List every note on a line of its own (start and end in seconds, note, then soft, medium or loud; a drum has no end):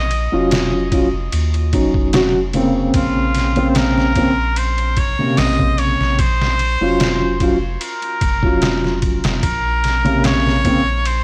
0.00 0.28 A#1 medium
0.00 0.52 D#5 loud
0.11 ride medium
0.32 1.29 F1 loud
0.32 0.87 F#3 medium
0.32 0.87 C#4 medium
0.32 0.87 F4 medium
0.51 snare loud
0.51 ride medium
0.92 1.05 F#3 medium
0.92 1.06 C#4 medium
0.92 1.06 F4 medium
0.92 kick loud
0.92 ride medium
1.32 1.74 D#2 loud
1.32 ride medium
1.54 ride soft
1.73 2.91 F1 medium
1.73 2.09 F#3 medium
1.73 2.09 C#4 medium
1.73 2.09 D#4 medium
1.73 kick loud
1.73 ride medium
1.94 kick loud
2.13 2.35 F#3 loud
2.13 2.35 C#4 medium
2.13 2.36 F#4 loud
2.13 snare loud
2.13 ride medium
2.53 3.51 C#3 medium
2.53 3.52 A#3 medium
2.53 3.52 C4 loud
2.53 ride medium
2.94 5.14 A#1 loud
2.94 3.66 F4 loud
2.94 kick loud
2.94 ride medium
3.35 snare soft
3.35 ride medium
3.56 4.11 C#3 medium
3.56 4.12 A#3 medium
3.56 4.12 C4 loud
3.56 ride soft
3.69 3.78 C5 medium
3.75 4.59 A#4 loud
3.75 snare loud
3.75 ride medium
3.98 snare soft
4.16 4.30 C#3 medium
4.16 4.30 A#3 medium
4.16 4.30 C4 loud
4.16 kick medium
4.16 ride medium
4.56 5.00 C5 loud
4.56 ride medium
4.78 ride soft
4.97 5.40 C#5 loud
4.97 kick medium
4.97 ride medium
5.19 6.17 C3 medium
5.19 6.16 C#3 medium
5.19 6.17 A#3 medium
5.37 5.95 A#1 medium
5.37 5.80 D#5 loud
5.37 snare loud
5.37 open hi-hat medium
5.59 kick medium
5.78 6.21 C#5 loud
5.78 ride medium
6.00 6.76 A#1 medium
6.00 snare soft
6.19 7.55 C5 loud
6.19 kick loud
6.19 ride medium
6.42 snare medium
6.59 ride medium
6.80 7.77 F1 loud
6.80 7.36 F#3 medium
6.80 7.36 C#4 medium
6.80 7.36 F4 loud
7.00 snare loud
7.00 ride medium
7.40 7.54 F#3 medium
7.40 7.54 C#4 medium
7.40 7.55 F4 loud
7.40 kick medium
7.40 ride medium
7.81 8.99 A#4 medium
7.81 ride medium
8.02 ride soft
8.21 9.20 F1 medium
8.21 kick loud
8.21 ride medium
8.42 9.40 F#3 medium
8.42 9.41 C#4 medium
8.42 9.42 F4 medium
8.42 kick loud
8.62 snare loud
8.62 ride medium
8.84 snare soft
9.02 kick medium
9.02 ride medium
9.23 9.40 F1 loud
9.23 snare loud
9.23 ride medium
9.43 11.24 A#1 loud
9.43 10.26 A#4 loud
9.43 kick loud
9.43 ride medium
9.84 snare soft
9.84 ride medium
10.05 10.60 C3 loud
10.05 10.60 C#3 loud
10.05 10.60 A#3 medium
10.05 ride soft
10.24 11.08 C#5 loud
10.24 snare loud
10.24 ride medium
10.47 snare medium
10.65 10.78 C#3 medium
10.65 10.78 A#3 medium
10.65 10.79 C4 medium
10.65 kick loud
10.65 ride medium
11.05 11.24 C5 loud
11.05 ride medium